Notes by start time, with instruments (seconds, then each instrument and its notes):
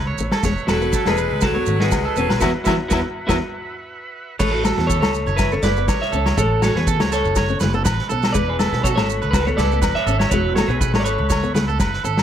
Already playing: upright bass C#2, transistor combo organ C#5 E5
0.07 clean electric guitar C#5
0.18 upright bass A1, steel-string acoustic guitar C#4, maracas
0.32 clean electric guitar A4, snare, low agogo
0.43 upright bass E1, steel-string acoustic guitar G#3, transistor combo organ B4 E5 F#5, clean electric guitar C#5, kick, snare, maracas
0.58 maracas
0.67 upright bass E1, steel-string acoustic guitar A3, clean electric guitar F#4 A4 B4, snare, low agogo, maracas
0.72 tenor saxophone F#3
0.82 steel-string acoustic guitar B3, maracas
0.93 clean electric guitar A4, kick, snare, maracas
1.06 upright bass E1, tenor saxophone G#3, steel-string acoustic guitar A3, clean electric guitar G#4 B4, snare, low agogo, maracas
1.17 clean electric guitar B4, maracas
1.31 upright bass C#2
1.41 clean electric guitar F#4 A4 B4, kick, snare, low agogo, maracas
1.45 tenor saxophone F#3
1.55 steel-string acoustic guitar B3, clean electric guitar C#5
1.66 upright bass G#1, steel-string acoustic guitar A3, maracas
1.80 tenor saxophone G#3, steel-string acoustic guitar B3, clean electric guitar F#4 G#4 B4, snare
1.91 upright bass C#2, kick, snare, low agogo, maracas
2.05 clean electric guitar A4
2.16 upright bass E1, tenor saxophone F#3, steel-string acoustic guitar C#4, clean electric guitar G#4 B4, maracas
2.29 upright bass B1, clean electric guitar B4, snare, low agogo
2.40 upright bass E2, steel-string acoustic guitar E3 F#3 B3, tenor saxophone F#3, clean electric guitar E4 F#4 B4 E5, kick, snare, low agogo, maracas
2.64 upright bass E2, tenor saxophone F#3, clean electric guitar E4 F#4 B4 E5, kick, snare, low agogo, maracas
2.68 steel-string acoustic guitar E3 F#3 B3
2.88 upright bass E2, steel-string acoustic guitar E3 F#3 B3, clean electric guitar E4 F#4 B4 E5, kick, snare, maracas
2.93 tenor saxophone F#3, low agogo
3.27 upright bass E2, steel-string acoustic guitar E3 F#3 B3, tenor saxophone F#3, clean electric guitar E4 F#4 B4 E5, kick, snare, low agogo, maracas
4.39 upright bass A1, steel-string acoustic guitar G#3, clean electric guitar A4 B4 C#5, transistor combo organ E5, kick, crash, maracas
4.52 clean electric guitar F#4 A4
4.64 steel-string acoustic guitar A3, clean electric guitar A4, snare, low agogo, maracas
4.78 upright bass E2, steel-string acoustic guitar B3, snare
4.87 clean electric guitar A4 C#5, kick, maracas
5.01 upright bass C#2, steel-string acoustic guitar A3, clean electric guitar A4 C#5, snare, low agogo
5.14 maracas
5.26 upright bass F#1, clean electric guitar C#5, maracas
5.36 clean electric guitar E4 B4, kick, snare, low agogo, maracas
5.52 steel-string acoustic guitar C#4, clean electric guitar A4 C#5, maracas
5.63 upright bass F#1, steel-string acoustic guitar A3, clean electric guitar B4 D5, snare, maracas
5.76 steel-string acoustic guitar B3, maracas
5.88 upright bass A1, clean electric guitar C#5, kick, snare, low agogo, maracas
6.01 clean electric guitar C#5 E5, snare
6.12 upright bass C#2, steel-string acoustic guitar C#4, clean electric guitar A4, maracas
6.26 clean electric guitar C#5, snare, low agogo, maracas
6.37 upright bass A1, steel-string acoustic guitar G#3, clean electric guitar A4 C#5, transistor combo organ F#5, kick, maracas
6.62 steel-string acoustic guitar A3, clean electric guitar F#4 A4 C#5, snare, low agogo, maracas
6.75 upright bass E2, steel-string acoustic guitar B3, clean electric guitar G#4 B4, snare
6.87 clean electric guitar A4, kick, maracas
7.00 upright bass C#2, steel-string acoustic guitar A3, clean electric guitar C#5, snare, low agogo
7.12 clean electric guitar A4 C#5, snare, maracas
7.24 upright bass F#1, maracas
7.35 clean electric guitar C#5, kick, snare, low agogo, maracas
7.48 steel-string acoustic guitar C#4, maracas
7.60 upright bass F#1, steel-string acoustic guitar A3, clean electric guitar B4, snare, maracas
7.74 steel-string acoustic guitar B3, clean electric guitar A4, maracas
7.85 upright bass A1, clean electric guitar B4, kick, snare, low agogo, maracas
7.99 snare
8.09 upright bass B1, steel-string acoustic guitar C#4, clean electric guitar A4, maracas
8.22 snare, low agogo, maracas
8.33 upright bass E1, steel-string acoustic guitar G#3, clean electric guitar B4 D5, transistor combo organ E5, kick, maracas
8.37 transistor combo organ B5
8.49 clean electric guitar G#4 B4
8.59 steel-string acoustic guitar A3, clean electric guitar A4, snare, low agogo, maracas
8.72 upright bass B1, steel-string acoustic guitar B3, snare
8.84 clean electric guitar F#4 A4 C#5, kick, maracas
8.96 upright bass G#1, steel-string acoustic guitar A3, clean electric guitar A4 C#5, snare, low agogo
9.10 maracas
9.22 upright bass C#2, clean electric guitar B4, maracas
9.31 clean electric guitar F#4 B4, kick, snare, low agogo, maracas
9.45 steel-string acoustic guitar B3, clean electric guitar A4 C#5, maracas
9.57 upright bass C#2, steel-string acoustic guitar A3, clean electric guitar A4 B4 D5, snare, maracas
9.72 steel-string acoustic guitar B3, maracas
9.82 upright bass E1, clean electric guitar B4, kick, snare, low agogo, maracas
9.95 clean electric guitar C#5 E5, snare
10.06 upright bass G#1, steel-string acoustic guitar C#4, clean electric guitar A4, maracas
10.19 clean electric guitar C#5, snare, low agogo, maracas
10.29 upright bass E1, clean electric guitar F#4 B4 C#5, kick, maracas
10.34 steel-string acoustic guitar G#3
10.55 steel-string acoustic guitar A3, clean electric guitar F#4 A4 C#5, snare, low agogo, maracas
10.68 upright bass B1, steel-string acoustic guitar B3, clean electric guitar G#4 B4, maracas
10.81 clean electric guitar B4, kick, maracas
10.94 upright bass G#1, steel-string acoustic guitar A3, clean electric guitar C#5, snare, low agogo
11.00 clean electric guitar D5
11.04 clean electric guitar A4 B4 C#5, maracas
11.18 upright bass C#2
11.30 clean electric guitar C#5, kick, snare, low agogo, maracas
11.43 steel-string acoustic guitar B3, maracas
11.54 upright bass C#2, steel-string acoustic guitar A3, clean electric guitar B4, snare, maracas
11.68 steel-string acoustic guitar B3, clean electric guitar A4, maracas
11.79 upright bass F#1, clean electric guitar B4, kick, snare, low agogo, maracas
11.93 snare
12.04 upright bass G#1, steel-string acoustic guitar C#4, clean electric guitar A4, maracas
12.17 snare, low agogo, maracas